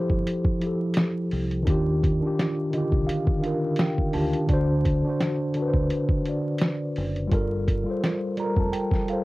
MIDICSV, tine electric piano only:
0, 0, Header, 1, 2, 480
1, 0, Start_track
1, 0, Tempo, 705882
1, 1134, Time_signature, 4, 2, 24, 8
1, 6283, End_track
2, 0, Start_track
2, 0, Title_t, "Tine electric piano"
2, 0, Program_c, 0, 4
2, 0, Control_c, 0, 64, 127
2, 0, Note_on_c, 0, 53, 70
2, 0, Note_on_c, 0, 64, 72
2, 0, Note_on_c, 0, 67, 69
2, 0, Note_on_c, 0, 69, 77
2, 0, Note_on_c, 0, 72, 95
2, 315, Note_off_c, 0, 53, 0
2, 324, Note_off_c, 0, 64, 0
2, 331, Note_off_c, 0, 67, 0
2, 338, Note_off_c, 0, 72, 0
2, 403, Note_on_c, 0, 53, 66
2, 417, Note_on_c, 0, 64, 66
2, 433, Note_on_c, 0, 67, 69
2, 451, Note_off_c, 0, 69, 0
2, 451, Note_on_c, 0, 69, 78
2, 990, Note_off_c, 0, 53, 0
2, 997, Note_off_c, 0, 64, 0
2, 1005, Note_off_c, 0, 67, 0
2, 1014, Note_off_c, 0, 69, 0
2, 1109, Note_on_c, 0, 51, 108
2, 1124, Note_on_c, 0, 62, 84
2, 1142, Control_c, 0, 64, 0
2, 1142, Note_on_c, 0, 65, 101
2, 1157, Note_on_c, 0, 67, 113
2, 1243, Control_c, 0, 64, 127
2, 1412, Note_off_c, 0, 51, 0
2, 1420, Note_off_c, 0, 62, 0
2, 1429, Note_off_c, 0, 65, 0
2, 1436, Note_off_c, 0, 67, 0
2, 1499, Note_on_c, 0, 51, 82
2, 1512, Note_on_c, 0, 62, 73
2, 1528, Note_on_c, 0, 65, 62
2, 1544, Note_on_c, 0, 67, 99
2, 1783, Note_off_c, 0, 51, 0
2, 1790, Note_off_c, 0, 62, 0
2, 1798, Note_off_c, 0, 65, 0
2, 1806, Note_off_c, 0, 67, 0
2, 1839, Note_on_c, 0, 51, 81
2, 1856, Note_on_c, 0, 50, 80
2, 1862, Note_on_c, 0, 75, 64
2, 1870, Note_on_c, 0, 65, 73
2, 1886, Note_on_c, 0, 67, 87
2, 2081, Note_off_c, 0, 75, 0
2, 2084, Note_on_c, 0, 77, 82
2, 2239, Note_off_c, 0, 51, 0
2, 2248, Note_off_c, 0, 50, 0
2, 2254, Note_off_c, 0, 65, 0
2, 2263, Note_off_c, 0, 67, 0
2, 2305, Note_on_c, 0, 51, 78
2, 2312, Note_off_c, 0, 77, 0
2, 2323, Note_on_c, 0, 62, 64
2, 2330, Note_on_c, 0, 77, 67
2, 2337, Note_on_c, 0, 65, 68
2, 2356, Note_on_c, 0, 70, 80
2, 2555, Note_off_c, 0, 77, 0
2, 2588, Note_on_c, 0, 79, 78
2, 2712, Note_off_c, 0, 51, 0
2, 2721, Note_off_c, 0, 62, 0
2, 2728, Note_off_c, 0, 65, 0
2, 2737, Note_off_c, 0, 70, 0
2, 2789, Note_on_c, 0, 51, 77
2, 2805, Note_off_c, 0, 79, 0
2, 2807, Note_on_c, 0, 62, 69
2, 2814, Note_on_c, 0, 81, 74
2, 2824, Note_on_c, 0, 65, 69
2, 2836, Note_on_c, 0, 67, 78
2, 2998, Note_off_c, 0, 51, 0
2, 3007, Note_off_c, 0, 62, 0
2, 3015, Note_off_c, 0, 65, 0
2, 3021, Note_off_c, 0, 67, 0
2, 3037, Note_off_c, 0, 81, 0
2, 3037, Note_on_c, 0, 50, 109
2, 3053, Note_on_c, 0, 62, 104
2, 3063, Control_c, 0, 64, 0
2, 3068, Note_on_c, 0, 66, 96
2, 3084, Note_on_c, 0, 72, 127
2, 3162, Control_c, 0, 64, 127
2, 3336, Note_off_c, 0, 50, 0
2, 3344, Note_off_c, 0, 62, 0
2, 3352, Note_off_c, 0, 66, 0
2, 3360, Note_off_c, 0, 72, 0
2, 3415, Note_on_c, 0, 50, 77
2, 3432, Note_on_c, 0, 62, 80
2, 3448, Note_on_c, 0, 66, 79
2, 3463, Note_on_c, 0, 72, 90
2, 3702, Note_off_c, 0, 50, 0
2, 3710, Note_off_c, 0, 62, 0
2, 3718, Note_off_c, 0, 66, 0
2, 3726, Note_off_c, 0, 72, 0
2, 3770, Note_on_c, 0, 50, 85
2, 3785, Note_on_c, 0, 62, 76
2, 3802, Note_on_c, 0, 66, 68
2, 3817, Note_on_c, 0, 71, 76
2, 3845, Note_off_c, 0, 71, 0
2, 3860, Note_on_c, 0, 72, 86
2, 4164, Note_off_c, 0, 50, 0
2, 4172, Note_off_c, 0, 62, 0
2, 4181, Note_off_c, 0, 66, 0
2, 4210, Note_off_c, 0, 72, 0
2, 4234, Note_on_c, 0, 50, 64
2, 4248, Note_on_c, 0, 62, 59
2, 4266, Note_on_c, 0, 66, 59
2, 4278, Note_on_c, 0, 74, 65
2, 4826, Note_off_c, 0, 50, 0
2, 4833, Note_off_c, 0, 62, 0
2, 4842, Note_off_c, 0, 66, 0
2, 4848, Note_off_c, 0, 74, 0
2, 4946, Note_on_c, 0, 55, 111
2, 4958, Note_on_c, 0, 65, 90
2, 4975, Note_on_c, 0, 69, 93
2, 4982, Control_c, 0, 64, 0
2, 4992, Note_on_c, 0, 70, 112
2, 5102, Control_c, 0, 64, 127
2, 5251, Note_off_c, 0, 55, 0
2, 5257, Note_off_c, 0, 65, 0
2, 5265, Note_off_c, 0, 69, 0
2, 5274, Note_off_c, 0, 70, 0
2, 5330, Note_on_c, 0, 55, 84
2, 5345, Note_on_c, 0, 65, 76
2, 5360, Note_on_c, 0, 69, 73
2, 5375, Note_on_c, 0, 72, 85
2, 5619, Note_off_c, 0, 55, 0
2, 5627, Note_off_c, 0, 65, 0
2, 5634, Note_off_c, 0, 69, 0
2, 5642, Note_off_c, 0, 72, 0
2, 5690, Note_on_c, 0, 55, 85
2, 5703, Note_on_c, 0, 65, 72
2, 5710, Note_on_c, 0, 82, 78
2, 5720, Note_on_c, 0, 69, 70
2, 5737, Note_on_c, 0, 70, 90
2, 5828, Note_off_c, 0, 82, 0
2, 5844, Note_on_c, 0, 81, 65
2, 5934, Note_on_c, 0, 79, 82
2, 5935, Note_off_c, 0, 81, 0
2, 6085, Note_off_c, 0, 55, 0
2, 6091, Note_off_c, 0, 65, 0
2, 6099, Note_off_c, 0, 69, 0
2, 6108, Note_off_c, 0, 70, 0
2, 6157, Note_off_c, 0, 79, 0
2, 6160, Note_on_c, 0, 55, 71
2, 6177, Note_on_c, 0, 65, 69
2, 6185, Note_on_c, 0, 77, 66
2, 6191, Note_on_c, 0, 69, 70
2, 6208, Note_on_c, 0, 72, 87
2, 6283, Note_off_c, 0, 55, 0
2, 6283, Note_off_c, 0, 65, 0
2, 6283, Note_off_c, 0, 69, 0
2, 6283, Note_off_c, 0, 72, 0
2, 6283, Note_off_c, 0, 77, 0
2, 6283, End_track
0, 0, End_of_file